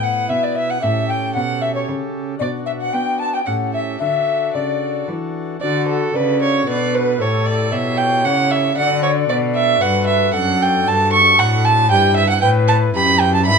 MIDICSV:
0, 0, Header, 1, 5, 480
1, 0, Start_track
1, 0, Key_signature, 2, "major"
1, 0, Tempo, 525855
1, 758, Time_signature, 3, 2, 24, 8
1, 3160, Tempo, 534759
1, 6040, Tempo, 523104
1, 12385, End_track
2, 0, Start_track
2, 0, Title_t, "Violin"
2, 0, Program_c, 0, 40
2, 30, Note_on_c, 0, 78, 72
2, 266, Note_on_c, 0, 76, 64
2, 280, Note_off_c, 0, 78, 0
2, 391, Note_on_c, 0, 74, 60
2, 405, Note_off_c, 0, 76, 0
2, 514, Note_off_c, 0, 74, 0
2, 521, Note_on_c, 0, 76, 67
2, 636, Note_on_c, 0, 78, 64
2, 650, Note_off_c, 0, 76, 0
2, 753, Note_on_c, 0, 76, 72
2, 767, Note_off_c, 0, 78, 0
2, 1003, Note_on_c, 0, 79, 72
2, 1017, Note_off_c, 0, 76, 0
2, 1230, Note_off_c, 0, 79, 0
2, 1236, Note_on_c, 0, 78, 70
2, 1474, Note_on_c, 0, 76, 68
2, 1488, Note_off_c, 0, 78, 0
2, 1595, Note_off_c, 0, 76, 0
2, 1601, Note_on_c, 0, 73, 51
2, 1716, Note_off_c, 0, 73, 0
2, 2203, Note_on_c, 0, 74, 61
2, 2276, Note_off_c, 0, 74, 0
2, 2432, Note_on_c, 0, 76, 60
2, 2481, Note_off_c, 0, 76, 0
2, 2566, Note_on_c, 0, 78, 64
2, 2680, Note_on_c, 0, 79, 68
2, 2693, Note_off_c, 0, 78, 0
2, 2919, Note_off_c, 0, 79, 0
2, 2923, Note_on_c, 0, 81, 65
2, 3039, Note_off_c, 0, 81, 0
2, 3050, Note_on_c, 0, 79, 60
2, 3096, Note_off_c, 0, 79, 0
2, 3156, Note_on_c, 0, 78, 57
2, 3228, Note_off_c, 0, 78, 0
2, 3403, Note_on_c, 0, 76, 59
2, 3637, Note_off_c, 0, 76, 0
2, 3651, Note_on_c, 0, 76, 65
2, 4121, Note_off_c, 0, 76, 0
2, 4130, Note_on_c, 0, 74, 45
2, 4602, Note_off_c, 0, 74, 0
2, 5089, Note_on_c, 0, 74, 74
2, 5310, Note_off_c, 0, 74, 0
2, 5334, Note_on_c, 0, 69, 72
2, 5578, Note_on_c, 0, 71, 72
2, 5591, Note_off_c, 0, 69, 0
2, 5808, Note_off_c, 0, 71, 0
2, 5816, Note_on_c, 0, 73, 77
2, 6042, Note_off_c, 0, 73, 0
2, 6057, Note_on_c, 0, 74, 78
2, 6294, Note_on_c, 0, 71, 80
2, 6307, Note_off_c, 0, 74, 0
2, 6535, Note_on_c, 0, 73, 69
2, 6548, Note_off_c, 0, 71, 0
2, 6760, Note_on_c, 0, 74, 75
2, 6773, Note_off_c, 0, 73, 0
2, 7001, Note_on_c, 0, 76, 78
2, 7014, Note_off_c, 0, 74, 0
2, 7238, Note_on_c, 0, 79, 88
2, 7252, Note_off_c, 0, 76, 0
2, 7484, Note_on_c, 0, 78, 86
2, 7498, Note_off_c, 0, 79, 0
2, 7726, Note_on_c, 0, 76, 82
2, 7740, Note_off_c, 0, 78, 0
2, 7963, Note_off_c, 0, 76, 0
2, 7968, Note_on_c, 0, 78, 88
2, 8198, Note_off_c, 0, 78, 0
2, 8204, Note_on_c, 0, 73, 78
2, 8277, Note_off_c, 0, 73, 0
2, 8446, Note_on_c, 0, 74, 75
2, 8520, Note_off_c, 0, 74, 0
2, 8681, Note_on_c, 0, 76, 90
2, 8924, Note_on_c, 0, 78, 93
2, 8938, Note_off_c, 0, 76, 0
2, 9152, Note_off_c, 0, 78, 0
2, 9158, Note_on_c, 0, 76, 91
2, 9399, Note_off_c, 0, 76, 0
2, 9408, Note_on_c, 0, 78, 94
2, 9663, Note_on_c, 0, 79, 93
2, 9677, Note_off_c, 0, 78, 0
2, 9898, Note_on_c, 0, 81, 102
2, 9912, Note_off_c, 0, 79, 0
2, 10124, Note_off_c, 0, 81, 0
2, 10130, Note_on_c, 0, 85, 107
2, 10369, Note_on_c, 0, 78, 89
2, 10383, Note_off_c, 0, 85, 0
2, 10608, Note_on_c, 0, 81, 96
2, 10621, Note_off_c, 0, 78, 0
2, 10844, Note_off_c, 0, 81, 0
2, 10849, Note_on_c, 0, 79, 99
2, 11075, Note_off_c, 0, 79, 0
2, 11081, Note_on_c, 0, 76, 100
2, 11194, Note_off_c, 0, 76, 0
2, 11200, Note_on_c, 0, 78, 93
2, 11306, Note_off_c, 0, 78, 0
2, 11311, Note_on_c, 0, 79, 97
2, 11385, Note_off_c, 0, 79, 0
2, 11554, Note_on_c, 0, 81, 97
2, 11627, Note_off_c, 0, 81, 0
2, 11797, Note_on_c, 0, 83, 97
2, 12027, Note_on_c, 0, 79, 101
2, 12041, Note_off_c, 0, 83, 0
2, 12153, Note_off_c, 0, 79, 0
2, 12164, Note_on_c, 0, 81, 93
2, 12262, Note_off_c, 0, 81, 0
2, 12267, Note_on_c, 0, 83, 105
2, 12385, Note_off_c, 0, 83, 0
2, 12385, End_track
3, 0, Start_track
3, 0, Title_t, "Recorder"
3, 0, Program_c, 1, 74
3, 34, Note_on_c, 1, 78, 79
3, 261, Note_off_c, 1, 78, 0
3, 266, Note_on_c, 1, 76, 78
3, 403, Note_on_c, 1, 74, 69
3, 417, Note_off_c, 1, 76, 0
3, 512, Note_on_c, 1, 76, 78
3, 525, Note_off_c, 1, 74, 0
3, 644, Note_on_c, 1, 78, 71
3, 658, Note_off_c, 1, 76, 0
3, 736, Note_off_c, 1, 78, 0
3, 741, Note_on_c, 1, 76, 84
3, 978, Note_off_c, 1, 76, 0
3, 984, Note_on_c, 1, 79, 76
3, 1220, Note_off_c, 1, 79, 0
3, 1226, Note_on_c, 1, 78, 78
3, 1281, Note_off_c, 1, 78, 0
3, 1474, Note_on_c, 1, 76, 75
3, 1591, Note_off_c, 1, 76, 0
3, 1596, Note_on_c, 1, 73, 59
3, 1713, Note_off_c, 1, 73, 0
3, 2184, Note_on_c, 1, 74, 73
3, 2239, Note_off_c, 1, 74, 0
3, 2427, Note_on_c, 1, 76, 70
3, 2481, Note_off_c, 1, 76, 0
3, 2561, Note_on_c, 1, 78, 66
3, 2673, Note_on_c, 1, 79, 75
3, 2686, Note_off_c, 1, 78, 0
3, 2917, Note_on_c, 1, 81, 74
3, 2930, Note_off_c, 1, 79, 0
3, 3047, Note_on_c, 1, 79, 70
3, 3060, Note_off_c, 1, 81, 0
3, 3167, Note_on_c, 1, 78, 72
3, 3180, Note_off_c, 1, 79, 0
3, 3403, Note_off_c, 1, 78, 0
3, 3411, Note_on_c, 1, 76, 62
3, 3464, Note_off_c, 1, 76, 0
3, 3642, Note_on_c, 1, 76, 83
3, 4135, Note_on_c, 1, 74, 59
3, 4148, Note_off_c, 1, 76, 0
3, 4614, Note_off_c, 1, 74, 0
3, 5105, Note_on_c, 1, 66, 70
3, 5564, Note_on_c, 1, 74, 70
3, 5577, Note_off_c, 1, 66, 0
3, 6027, Note_off_c, 1, 74, 0
3, 6032, Note_on_c, 1, 71, 71
3, 6523, Note_on_c, 1, 69, 65
3, 6537, Note_off_c, 1, 71, 0
3, 7003, Note_on_c, 1, 73, 75
3, 7017, Note_off_c, 1, 69, 0
3, 7947, Note_off_c, 1, 73, 0
3, 7953, Note_on_c, 1, 74, 89
3, 8918, Note_on_c, 1, 71, 78
3, 8932, Note_off_c, 1, 74, 0
3, 9396, Note_on_c, 1, 69, 77
3, 9410, Note_off_c, 1, 71, 0
3, 10609, Note_off_c, 1, 69, 0
3, 10842, Note_on_c, 1, 67, 86
3, 11149, Note_off_c, 1, 67, 0
3, 11312, Note_on_c, 1, 71, 91
3, 11762, Note_off_c, 1, 71, 0
3, 11804, Note_on_c, 1, 67, 79
3, 12261, Note_off_c, 1, 67, 0
3, 12267, Note_on_c, 1, 76, 87
3, 12385, Note_off_c, 1, 76, 0
3, 12385, End_track
4, 0, Start_track
4, 0, Title_t, "Pipe organ"
4, 0, Program_c, 2, 19
4, 0, Note_on_c, 2, 45, 50
4, 0, Note_on_c, 2, 59, 47
4, 0, Note_on_c, 2, 64, 45
4, 0, Note_on_c, 2, 71, 46
4, 238, Note_off_c, 2, 45, 0
4, 272, Note_on_c, 2, 47, 48
4, 702, Note_off_c, 2, 59, 0
4, 707, Note_off_c, 2, 64, 0
4, 712, Note_on_c, 2, 61, 48
4, 715, Note_off_c, 2, 71, 0
4, 718, Note_off_c, 2, 47, 0
4, 720, Note_on_c, 2, 67, 44
4, 730, Note_on_c, 2, 69, 45
4, 747, Note_on_c, 2, 45, 48
4, 1195, Note_off_c, 2, 45, 0
4, 1236, Note_on_c, 2, 47, 49
4, 1679, Note_off_c, 2, 47, 0
4, 1705, Note_on_c, 2, 49, 50
4, 2135, Note_off_c, 2, 61, 0
4, 2139, Note_off_c, 2, 67, 0
4, 2144, Note_off_c, 2, 69, 0
4, 2151, Note_on_c, 2, 62, 42
4, 2152, Note_off_c, 2, 49, 0
4, 2167, Note_on_c, 2, 66, 44
4, 2196, Note_on_c, 2, 47, 48
4, 2640, Note_off_c, 2, 47, 0
4, 2668, Note_on_c, 2, 59, 45
4, 3108, Note_off_c, 2, 62, 0
4, 3116, Note_off_c, 2, 66, 0
4, 3119, Note_off_c, 2, 59, 0
4, 3121, Note_on_c, 2, 61, 39
4, 3140, Note_on_c, 2, 67, 39
4, 3152, Note_on_c, 2, 69, 41
4, 3168, Note_on_c, 2, 45, 44
4, 3606, Note_off_c, 2, 61, 0
4, 3608, Note_off_c, 2, 45, 0
4, 3609, Note_on_c, 2, 62, 37
4, 3610, Note_off_c, 2, 69, 0
4, 3616, Note_off_c, 2, 67, 0
4, 3618, Note_on_c, 2, 66, 39
4, 3628, Note_on_c, 2, 69, 37
4, 3651, Note_on_c, 2, 50, 43
4, 4095, Note_off_c, 2, 50, 0
4, 4131, Note_on_c, 2, 49, 43
4, 4577, Note_off_c, 2, 49, 0
4, 4614, Note_on_c, 2, 52, 43
4, 5040, Note_off_c, 2, 62, 0
4, 5044, Note_off_c, 2, 66, 0
4, 5049, Note_off_c, 2, 69, 0
4, 5057, Note_off_c, 2, 52, 0
4, 5059, Note_on_c, 2, 62, 42
4, 5070, Note_on_c, 2, 66, 43
4, 5090, Note_on_c, 2, 69, 42
4, 5100, Note_on_c, 2, 50, 48
4, 5534, Note_off_c, 2, 50, 0
4, 5570, Note_on_c, 2, 49, 50
4, 6006, Note_off_c, 2, 49, 0
4, 6050, Note_on_c, 2, 47, 51
4, 6469, Note_off_c, 2, 62, 0
4, 6474, Note_off_c, 2, 66, 0
4, 6485, Note_off_c, 2, 69, 0
4, 6486, Note_on_c, 2, 64, 44
4, 6491, Note_off_c, 2, 47, 0
4, 6503, Note_on_c, 2, 67, 44
4, 6512, Note_on_c, 2, 69, 48
4, 6524, Note_on_c, 2, 45, 50
4, 6966, Note_off_c, 2, 45, 0
4, 7009, Note_on_c, 2, 47, 53
4, 7449, Note_off_c, 2, 47, 0
4, 7489, Note_on_c, 2, 49, 51
4, 7909, Note_off_c, 2, 64, 0
4, 7918, Note_off_c, 2, 67, 0
4, 7922, Note_off_c, 2, 69, 0
4, 7931, Note_off_c, 2, 49, 0
4, 7942, Note_on_c, 2, 62, 51
4, 7953, Note_on_c, 2, 66, 51
4, 7964, Note_on_c, 2, 69, 49
4, 7978, Note_on_c, 2, 50, 54
4, 8416, Note_off_c, 2, 50, 0
4, 8455, Note_on_c, 2, 47, 54
4, 8897, Note_off_c, 2, 47, 0
4, 8945, Note_on_c, 2, 43, 57
4, 9356, Note_off_c, 2, 62, 0
4, 9367, Note_off_c, 2, 66, 0
4, 9373, Note_off_c, 2, 69, 0
4, 9374, Note_on_c, 2, 62, 53
4, 9381, Note_off_c, 2, 43, 0
4, 9388, Note_on_c, 2, 66, 51
4, 9405, Note_on_c, 2, 69, 55
4, 9418, Note_on_c, 2, 42, 59
4, 9858, Note_off_c, 2, 42, 0
4, 9890, Note_on_c, 2, 43, 63
4, 10332, Note_off_c, 2, 43, 0
4, 10369, Note_on_c, 2, 45, 59
4, 10789, Note_off_c, 2, 62, 0
4, 10800, Note_off_c, 2, 66, 0
4, 10808, Note_off_c, 2, 69, 0
4, 10808, Note_on_c, 2, 62, 56
4, 10811, Note_off_c, 2, 45, 0
4, 10821, Note_on_c, 2, 64, 53
4, 10835, Note_on_c, 2, 71, 53
4, 10850, Note_on_c, 2, 43, 64
4, 11291, Note_off_c, 2, 43, 0
4, 11291, Note_off_c, 2, 62, 0
4, 11320, Note_on_c, 2, 45, 60
4, 11763, Note_off_c, 2, 45, 0
4, 11799, Note_on_c, 2, 42, 63
4, 12229, Note_off_c, 2, 64, 0
4, 12236, Note_off_c, 2, 71, 0
4, 12236, Note_on_c, 2, 62, 60
4, 12239, Note_off_c, 2, 42, 0
4, 12255, Note_on_c, 2, 64, 57
4, 12263, Note_on_c, 2, 71, 57
4, 12279, Note_on_c, 2, 44, 65
4, 12385, Note_off_c, 2, 44, 0
4, 12385, Note_off_c, 2, 62, 0
4, 12385, Note_off_c, 2, 64, 0
4, 12385, Note_off_c, 2, 71, 0
4, 12385, End_track
5, 0, Start_track
5, 0, Title_t, "Cello"
5, 0, Program_c, 3, 42
5, 0, Note_on_c, 3, 45, 69
5, 242, Note_off_c, 3, 45, 0
5, 272, Note_on_c, 3, 47, 65
5, 721, Note_off_c, 3, 47, 0
5, 763, Note_on_c, 3, 45, 75
5, 1206, Note_off_c, 3, 45, 0
5, 1242, Note_on_c, 3, 47, 68
5, 1685, Note_off_c, 3, 47, 0
5, 1720, Note_on_c, 3, 49, 69
5, 2163, Note_off_c, 3, 49, 0
5, 2194, Note_on_c, 3, 47, 68
5, 2641, Note_off_c, 3, 47, 0
5, 2679, Note_on_c, 3, 59, 63
5, 3127, Note_off_c, 3, 59, 0
5, 3170, Note_on_c, 3, 45, 59
5, 3612, Note_off_c, 3, 45, 0
5, 3649, Note_on_c, 3, 50, 62
5, 4096, Note_off_c, 3, 50, 0
5, 4131, Note_on_c, 3, 49, 54
5, 4579, Note_off_c, 3, 49, 0
5, 4612, Note_on_c, 3, 52, 59
5, 5059, Note_off_c, 3, 52, 0
5, 5097, Note_on_c, 3, 50, 69
5, 5535, Note_off_c, 3, 50, 0
5, 5561, Note_on_c, 3, 49, 60
5, 6028, Note_off_c, 3, 49, 0
5, 6036, Note_on_c, 3, 47, 67
5, 6523, Note_on_c, 3, 45, 69
5, 6537, Note_off_c, 3, 47, 0
5, 7003, Note_on_c, 3, 47, 64
5, 7017, Note_off_c, 3, 45, 0
5, 7482, Note_on_c, 3, 49, 69
5, 7496, Note_off_c, 3, 47, 0
5, 7964, Note_off_c, 3, 49, 0
5, 7970, Note_on_c, 3, 50, 76
5, 8439, Note_off_c, 3, 50, 0
5, 8443, Note_on_c, 3, 47, 70
5, 8917, Note_off_c, 3, 47, 0
5, 8926, Note_on_c, 3, 43, 74
5, 9399, Note_off_c, 3, 43, 0
5, 9409, Note_on_c, 3, 42, 80
5, 9880, Note_off_c, 3, 42, 0
5, 9889, Note_on_c, 3, 43, 74
5, 10358, Note_off_c, 3, 43, 0
5, 10366, Note_on_c, 3, 45, 78
5, 10836, Note_on_c, 3, 43, 84
5, 10850, Note_off_c, 3, 45, 0
5, 11314, Note_off_c, 3, 43, 0
5, 11320, Note_on_c, 3, 45, 83
5, 11790, Note_off_c, 3, 45, 0
5, 11797, Note_on_c, 3, 42, 82
5, 12276, Note_on_c, 3, 44, 87
5, 12289, Note_off_c, 3, 42, 0
5, 12385, Note_off_c, 3, 44, 0
5, 12385, End_track
0, 0, End_of_file